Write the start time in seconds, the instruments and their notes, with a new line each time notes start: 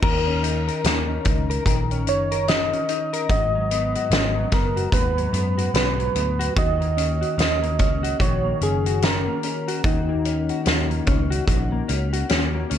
Already playing: clean electric guitar C#4 D#4
0.02 picked electric bass D#2, clean electric guitar D#3 A#4, synth keys A#4, kick, crash
0.27 clean electric guitar C#4
0.43 clean electric guitar D#4, closed hi-hat
0.68 clean electric guitar A#4, closed hi-hat
0.84 picked electric bass D#2, clean electric guitar D#4, snare, closed hi-hat
1.08 clean electric guitar C#4
1.25 picked electric bass C#2, clean electric guitar D#4, kick, closed hi-hat
1.50 clean electric guitar A#4, closed hi-hat
1.65 picked electric bass A#1, clean electric guitar D#3 A#4, kick, closed hi-hat
1.91 clean electric guitar C#4, closed hi-hat
2.07 picked electric bass F#1, clean electric guitar D#4, synth keys C#5, closed hi-hat
2.32 clean electric guitar A#4, closed hi-hat
2.48 clean electric guitar D#4, synth keys D#5, snare, closed hi-hat
2.73 clean electric guitar C#4, closed hi-hat
2.89 clean electric guitar D#4, closed hi-hat
3.13 clean electric guitar A#4, closed hi-hat
3.29 picked electric bass G#1, clean electric guitar G#2 F#4, synth keys D#5, kick, closed hi-hat
3.55 clean electric guitar F#3
3.71 clean electric guitar B3, closed hi-hat
3.95 clean electric guitar F#4, closed hi-hat
4.11 picked electric bass G#1, clean electric guitar B3, snare, closed hi-hat
4.36 clean electric guitar F#3
4.51 picked electric bass F#1, clean electric guitar B3, synth keys A#4, kick, snare, closed hi-hat
4.77 clean electric guitar F#4, closed hi-hat
4.92 picked electric bass D#2, clean electric guitar G#2 F#4, synth keys B4, kick, closed hi-hat
5.17 clean electric guitar F#3, closed hi-hat
5.33 picked electric bass F#2, clean electric guitar B3, closed hi-hat
5.58 clean electric guitar F#4, closed hi-hat
5.74 picked electric bass B1, clean electric guitar B3, synth keys B4, snare, closed hi-hat
5.99 clean electric guitar F#3, closed hi-hat
6.15 picked electric bass D2, clean electric guitar B3, closed hi-hat
6.39 clean electric guitar F#4, closed hi-hat
6.56 picked electric bass D#2, clean electric guitar D#3 F#4, synth keys D#5, kick, closed hi-hat
6.80 clean electric guitar A#3, closed hi-hat
6.97 clean electric guitar C#4, closed hi-hat
7.21 clean electric guitar F#4, closed hi-hat
7.38 picked electric bass D#2, clean electric guitar C#4, synth keys D#5, snare, closed hi-hat
7.62 clean electric guitar A#3, closed hi-hat
7.79 picked electric bass C#2, clean electric guitar C#4, kick, closed hi-hat
8.03 clean electric guitar F#4, closed hi-hat
8.19 picked electric bass A#1, clean electric guitar D#3 F#4, synth keys C#5, kick, closed hi-hat
8.44 clean electric guitar A#3
8.61 picked electric bass F#1, clean electric guitar C#4, synth keys G#4, closed hi-hat
8.86 clean electric guitar F#4, closed hi-hat
9.02 clean electric guitar C#4, synth keys A#4, snare, closed hi-hat
9.27 clean electric guitar A#3
9.43 clean electric guitar C#4, closed hi-hat
9.68 clean electric guitar F#4, closed hi-hat
9.84 picked electric bass D#2, clean electric guitar D#3 F#4, synth keys D#4, kick, closed hi-hat
10.09 clean electric guitar A#3
10.25 clean electric guitar C#4, closed hi-hat
10.49 clean electric guitar F#4, closed hi-hat
10.65 picked electric bass D#2, clean electric guitar C#4, snare, closed hi-hat
10.90 clean electric guitar A#3, closed hi-hat
11.07 picked electric bass C#2, clean electric guitar C#4, kick, closed hi-hat
11.30 clean electric guitar F#4, closed hi-hat
11.48 picked electric bass A#1, clean electric guitar F#4, kick, closed hi-hat
11.72 clean electric guitar A#3
11.88 picked electric bass C#2, clean electric guitar C#4, closed hi-hat
12.13 clean electric guitar F#4, closed hi-hat
12.29 picked electric bass D#2, clean electric guitar C#4, snare, closed hi-hat
12.55 clean electric guitar A#3
12.70 picked electric bass D2, clean electric guitar C#4, closed hi-hat